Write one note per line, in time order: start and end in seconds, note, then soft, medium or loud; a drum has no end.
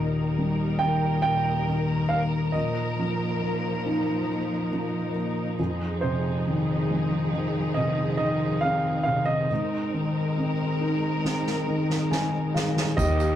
0.00 2.50 D#2 medium
0.00 1.20 A#2 soft
0.00 0.80 D#3 soft
0.00 2.50 G3 medium
0.00 2.50 A#3 medium
0.00 2.51 D#4 medium
0.00 5.54 A#4 medium
0.00 0.85 D#5 medium
0.38 2.07 G3 soft
0.79 1.66 D#3 soft
0.79 1.21 G5 medium
1.22 2.51 A#2 soft
1.22 2.06 G5 medium
1.68 2.52 D#3 soft
2.09 2.54 A#3 soft
2.09 2.19 F5 medium
2.52 5.55 A#2 soft
2.52 5.56 F3 medium
2.52 5.56 A#3 medium
2.52 12.94 D#4 medium
2.52 5.10 D#5 medium
2.99 4.68 F3 soft
3.42 4.28 A#3 soft
3.86 5.55 D#4 soft
4.30 5.14 A#3 soft
4.73 5.57 F3 soft
5.16 5.58 A#3 soft
5.59 9.03 F2 medium
5.59 9.46 F3 medium
5.59 12.94 C4 medium
5.59 9.46 G#4 medium
6.01 7.72 C3 soft
6.01 7.72 C5 medium
6.47 7.32 D#3 soft
6.90 8.60 G#3 soft
7.33 8.18 D#3 soft
7.74 9.05 C3 soft
7.74 8.16 D#5 medium
8.17 9.46 D#3 soft
8.17 8.63 D#5 medium
8.61 9.48 C4 medium
8.61 9.02 F5 medium
9.03 9.48 C3 soft
9.03 9.27 F5 medium
9.26 12.06 D#5 medium
9.49 12.94 G#2 medium
9.49 12.94 G#3 medium
9.49 12.94 A#4 medium
9.94 11.64 D#3 soft
10.37 11.23 C4 soft
10.81 12.50 D#4 soft
11.24 12.10 C4 soft
11.24 snare soft
11.46 snare soft
11.67 12.94 D#3 soft
11.90 snare soft
12.11 12.95 C4 soft
12.11 12.51 G#5 medium
12.11 snare medium
12.54 12.97 G#4 soft
12.54 12.95 F5 medium
12.54 snare medium
12.77 snare medium
12.97 13.36 D#2 loud
12.97 13.36 D#3 medium
12.97 13.36 G3 medium
12.97 13.36 A#3 medium
12.97 13.36 D#4 medium
12.97 13.36 G4 medium
12.97 13.36 D#5 medium
12.97 kick loud
12.97 floor tom medium
12.97 crash medium
12.97 tambourine soft
13.20 tambourine soft